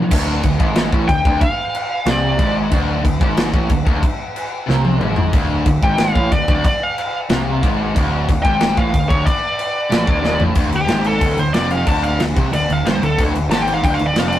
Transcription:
0.02 distorted electric guitar A#2 F3
0.10 picked electric bass D1, distorted electric guitar D2, kick, crash
0.43 picked electric bass D1, distorted electric guitar D2, kick, crash
0.59 picked electric bass G#1, distorted electric guitar G#2, kick
0.75 snare, crash
0.92 picked electric bass A1, distorted electric guitar A2, kick
1.08 picked electric bass D1, distorted electric guitar D2, lead electric guitar G5, kick, crash
1.25 picked electric bass D1, distorted electric guitar D2, kick
1.41 lead electric guitar F5, kick, crash
1.74 crash
2.06 picked electric bass C2, distorted electric guitar C3, lead electric guitar D5, snare, crash
2.39 picked electric bass G#1, distorted electric guitar G#2, kick, crash
2.71 picked electric bass D1, distorted electric guitar D2, kick, crash
3.05 picked electric bass D1, distorted electric guitar D2, kick, crash
3.21 picked electric bass G#1, distorted electric guitar G#2, kick
3.37 snare, crash
3.53 picked electric bass A1, distorted electric guitar A2, kick
3.69 picked electric bass D1, distorted electric guitar D2, kick, crash
3.85 picked electric bass D1, distorted electric guitar D2, kick
4.03 kick, crash
4.36 crash
4.67 picked electric bass C2, distorted electric guitar C3, snare
4.85 high tom
5.00 picked electric bass G#1, distorted electric guitar G#2, mid tom
5.16 floor tom
5.33 picked electric bass D1, distorted electric guitar D2, kick, crash
5.66 picked electric bass D1, distorted electric guitar D2, kick, crash
5.83 picked electric bass G#1, distorted electric guitar G#2, lead electric guitar G5, kick
5.98 lead electric guitar F5, snare, crash
6.15 picked electric bass A1, distorted electric guitar A2, kick
6.32 picked electric bass D1, distorted electric guitar D2, lead electric guitar D5, kick, crash
6.48 picked electric bass D1, distorted electric guitar D2, kick
6.65 lead electric guitar D5, kick, crash
6.83 lead electric guitar F5
6.98 crash
7.29 picked electric bass C2, distorted electric guitar C3, snare, crash
7.62 picked electric bass G#1, distorted electric guitar G#2, kick, crash
7.94 picked electric bass D1, distorted electric guitar D2, kick, crash
8.28 picked electric bass D1, distorted electric guitar D2, kick, crash
8.43 picked electric bass G#1, distorted electric guitar G#2, lead electric guitar G5, kick
8.60 snare, crash
8.76 picked electric bass A1, distorted electric guitar A2, lead electric guitar F5, kick
8.93 picked electric bass D1, distorted electric guitar D2, kick, crash
9.09 picked electric bass D1, distorted electric guitar D2, lead electric guitar C#5, kick
9.25 lead electric guitar D5, kick, crash
9.59 crash
9.90 picked electric bass A1, distorted electric guitar A2, snare, crash
10.07 picked electric bass D1, distorted electric guitar D2, kick
10.22 picked electric bass D#1, distorted electric guitar D#2, snare
10.38 picked electric bass A1, distorted electric guitar A2, floor tom
10.55 picked electric bass D1, distorted electric guitar D2, kick, crash
10.71 picked electric bass D1, distorted electric guitar D2, crash
10.76 lead electric guitar G4
10.87 picked electric bass G#1, distorted electric guitar G#2, snare, crash
11.04 lead electric guitar A4, crash
11.21 picked electric bass D1, distorted electric guitar D2, kick, crash
11.37 picked electric bass D1, distorted electric guitar D2, lead electric guitar C5, crash
11.53 picked electric bass F1, distorted electric guitar F2, lead electric guitar D5, snare, crash
11.70 lead electric guitar F5, crash
11.87 picked electric bass D1, distorted electric guitar D2, lead electric guitar A5, kick, crash
12.03 lead electric guitar F5, crash
12.20 picked electric bass D1, distorted electric guitar D2, snare, crash
12.36 picked electric bass C2, distorted electric guitar C3, kick, crash
12.52 picked electric bass D1, distorted electric guitar D2, lead electric guitar D5, crash
12.69 picked electric bass D1, distorted electric guitar D2, lead electric guitar F5, crash
12.85 picked electric bass G1, distorted electric guitar G2, lead electric guitar C5, snare, crash
13.01 picked electric bass D1, distorted electric guitar D2, lead electric guitar A4, crash
13.18 picked electric bass D1, distorted electric guitar D2, kick, crash
13.35 picked electric bass D1, distorted electric guitar D2, crash
13.51 picked electric bass G#1, distorted electric guitar G#2, lead electric guitar A5, snare, crash
13.62 lead electric guitar G5
13.67 crash
13.74 lead electric guitar F5
13.83 picked electric bass D1, distorted electric guitar D2, lead electric guitar G5, kick, crash
13.94 lead electric guitar F5
13.99 picked electric bass D1, distorted electric guitar D2, crash
14.07 lead electric guitar D5
14.15 picked electric bass F1, distorted electric guitar F2, snare, crash
14.19 lead electric guitar F5
14.29 lead electric guitar D5, crash

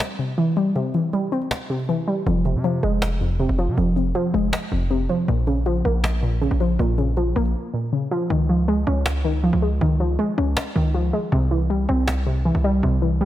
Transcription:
Already playing: synth pluck C3 E3 G3 C4
0.00 cajon slap
0.19 synth pluck C3, cajon slap
0.38 synth pluck E3, cajon slap
0.56 synth pluck G3, cajon slap
0.76 synth pluck C3, cajon slap
0.94 synth pluck E3, cajon slap
1.13 synth pluck G3, cajon slap
1.32 synth pluck C4, cajon slap
1.42 cajon slap
1.51 cajon slap
1.70 synth pluck C3, cajon slap
1.75 cajon slap
1.79 cajon slap
1.84 cajon slap
1.89 synth pluck E3, cajon slap
2.08 synth pluck G3
2.26 808-style bass F1, synth pluck F2, cajon slap
2.45 synth pluck C3, cajon slap
2.55 808-style bass C3
2.64 synth pluck F3, cajon slap
2.83 808-style bass F1, synth pluck G#3, cajon slap
3.02 cajon slap
3.21 synth pluck F2, cajon slap
3.40 synth pluck C3, cajon slap
3.49 808-style bass F1
3.58 synth pluck F3, cajon slap
3.68 808-style bass C3
3.77 808-style bass F1, synth pluck F2, cajon slap
3.96 synth pluck C3, cajon slap
4.15 synth pluck F3, cajon slap
4.34 808-style bass F1, synth pluck G#3, cajon slap
4.53 cajon slap
4.72 808-style bass F1, synth pluck F2, cajon slap
4.91 synth pluck C3, cajon slap
5.09 synth pluck F3, cajon slap
5.28 808-style bass A#1, synth pluck A#2, cajon slap
5.47 synth pluck C#3, cajon slap
5.66 synth pluck F3, cajon slap
5.85 808-style bass A#1, synth pluck A#3, cajon slap
6.04 cajon slap
6.23 synth pluck A#2, cajon slap
6.42 synth pluck C#3, cajon slap
6.51 808-style bass A#1
6.60 synth pluck F3, cajon slap
6.79 808-style bass A#1, synth pluck A#2, cajon slap
6.98 synth pluck C#3, cajon slap
7.17 synth pluck F3, cajon slap
7.36 808-style bass A#1, synth pluck A#3, cajon slap
7.45 cajon slap
7.74 synth pluck A#2
7.93 synth pluck C#3
8.11 synth pluck F3
8.30 808-style bass C#2, synth pluck D#3
8.49 synth pluck F3
8.68 synth pluck G#3
8.87 808-style bass C#2, synth pluck C#4
9.06 cajon slap
9.25 synth pluck D#3
9.44 synth pluck F3
9.53 808-style bass C#2
9.62 synth pluck G#3
9.81 808-style bass C#2, synth pluck D#3
10.00 synth pluck F3
10.19 synth pluck G#3
10.38 808-style bass C#2, synth pluck C#4
10.57 cajon slap
10.76 808-style bass C#2, synth pluck D#3
10.94 synth pluck F3
11.13 synth pluck G#3
11.32 808-style bass C2, synth pluck C3
11.51 synth pluck E3
11.70 synth pluck G3
11.89 808-style bass C2, synth pluck C4
12.08 cajon slap
12.27 synth pluck C3
12.45 synth pluck E3
12.55 808-style bass C2
12.64 synth pluck G3
12.83 808-style bass C2, synth pluck C3
13.02 synth pluck E3
13.21 synth pluck G3

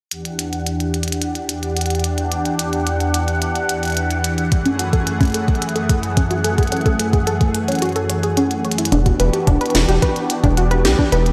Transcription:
0.11 analog synth pad E2 E3 D4 G4 F#5, closed hi-hat
0.25 closed hi-hat
0.39 closed hi-hat
0.53 closed hi-hat
0.67 closed hi-hat
0.80 closed hi-hat
0.94 closed hi-hat
1.03 closed hi-hat
1.08 closed hi-hat
1.12 closed hi-hat
1.22 closed hi-hat
1.35 closed hi-hat
1.49 closed hi-hat
1.63 closed hi-hat
1.77 closed hi-hat
1.81 closed hi-hat
1.86 closed hi-hat
1.90 closed hi-hat
1.95 closed hi-hat
2.00 closed hi-hat
2.04 closed hi-hat
2.18 closed hi-hat
2.32 closed hi-hat
2.45 closed hi-hat
2.59 closed hi-hat
2.73 closed hi-hat
2.87 closed hi-hat
3.00 closed hi-hat
3.14 closed hi-hat
3.28 closed hi-hat
3.42 closed hi-hat
3.56 closed hi-hat
3.69 closed hi-hat
3.83 closed hi-hat
3.85 closed hi-hat
3.88 closed hi-hat
3.90 closed hi-hat
3.92 closed hi-hat
3.95 closed hi-hat
3.97 closed hi-hat
4.11 closed hi-hat
4.24 closed hi-hat
4.38 closed hi-hat
4.52 analog synth pad F#2 A3 G#4, kick, closed hi-hat
4.66 synth pluck C#4, closed hi-hat
4.79 synth pluck F#4, closed hi-hat
4.93 synth pluck A4, kick, closed hi-hat
5.07 synth pluck G#4, closed hi-hat
5.21 synth pluck C#4, kick, closed hi-hat
5.23 closed hi-hat
5.25 closed hi-hat
5.28 closed hi-hat
5.30 closed hi-hat
5.32 synth pluck A4, closed hi-hat
5.34 closed hi-hat
5.48 kick, closed hi-hat
5.55 closed hi-hat
5.62 synth pluck G#4, closed hi-hat
5.69 closed hi-hat
5.76 synth pluck A4, closed hi-hat
5.89 kick, closed hi-hat
6.03 closed hi-hat
6.17 synth pluck C#4, kick, closed hi-hat
6.31 synth pluck F#4, closed hi-hat
6.44 synth pluck A4, closed hi-hat
6.58 synth pluck G#4, kick, closed hi-hat
6.63 closed hi-hat
6.67 closed hi-hat
6.72 synth pluck C#4, closed hi-hat
6.81 closed hi-hat
6.86 synth pluck A4, kick, closed hi-hat
7.00 closed hi-hat
7.13 synth pluck G#4, kick, closed hi-hat
7.27 synth pluck A4, closed hi-hat
7.41 kick, closed hi-hat
7.55 closed hi-hat
7.68 synth pluck C#4, closed hi-hat
7.72 closed hi-hat
7.75 closed hi-hat
7.79 synth pluck F#4, closed hi-hat
7.82 closed hi-hat
7.86 closed hi-hat
7.89 closed hi-hat
7.92 closed hi-hat
7.96 synth pluck A4, closed hi-hat
8.10 synth pluck C#5, closed hi-hat
8.23 synth pluck G#4, closed hi-hat
8.37 synth pluck C#4, closed hi-hat
8.51 closed hi-hat
8.65 synth pluck C#5, closed hi-hat
8.72 closed hi-hat
8.78 synth pluck E4, closed hi-hat
8.85 closed hi-hat
8.92 acid bass E1, analog synth pad E3 B3 D4 F#4 G4, synth pluck D4, closed hi-hat
9.06 synth pluck F#4, kick, closed hi-hat
9.20 acid bass E1, synth pluck B4, closed hi-hat
9.33 synth pluck G4, closed hi-hat
9.47 acid bass E1, synth pluck D4, kick, closed hi-hat
9.61 synth pluck B4, closed hi-hat
9.66 closed hi-hat
9.70 closed hi-hat
9.75 acid bass E1, snare, closed hi-hat
9.79 closed hi-hat
9.84 closed hi-hat
9.89 acid bass E1, synth pluck G4, closed hi-hat
10.02 synth pluck B4, kick, closed hi-hat
10.16 closed hi-hat
10.30 closed hi-hat
10.44 acid bass E1, synth pluck D4, kick, closed hi-hat
10.57 synth pluck F#4, closed hi-hat
10.71 synth pluck B4, closed hi-hat
10.85 acid bass B1, synth pluck G4, snare, closed hi-hat
10.99 synth pluck D4, kick
11.12 acid bass E1, analog synth pad E4, synth pluck B4, closed hi-hat
11.26 closed hi-hat

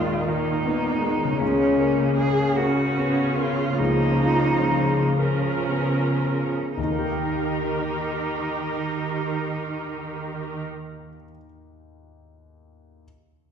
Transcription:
Already playing: grand piano D#2 A#2 F4 A#4, harp D#3, cello section D#3, viola section D#3 G#3, cello F4
0.28 viola section A#3, cello D#4, grand piano A#4
0.65 viola section A#3, grand piano B3
1.04 viola section G#3, grand piano A#4
1.24 harp C#3
1.28 harp A#3
1.32 harp C#4
1.37 cello C#4, harp A#4
1.41 grand piano C#2, viola section C#3 A#3, cello section C#3
1.80 grand piano A#4
2.17 grand piano C#3, cello G#4
2.56 viola section C#4, cello F#4, grand piano A#4
2.98 grand piano B3
3.36 cello F4, grand piano A#4
3.79 grand piano C#2, viola section F3 A#3, cello D#4
4.25 grand piano F4
4.71 grand piano C#3
5.19 viola section F3 A#4, cello C#4, grand piano A#4
5.70 grand piano B3
6.24 grand piano A#4
6.77 grand piano D#2, cello section D#3, harp D#3, cello D#4, viola section G4 A#4
6.84 grand piano D#3, harp A#3
6.91 grand piano A#3, harp D#4
6.98 grand piano G4, harp G4
7.05 grand piano A#4, harp A#4
7.12 grand piano G5, harp G5

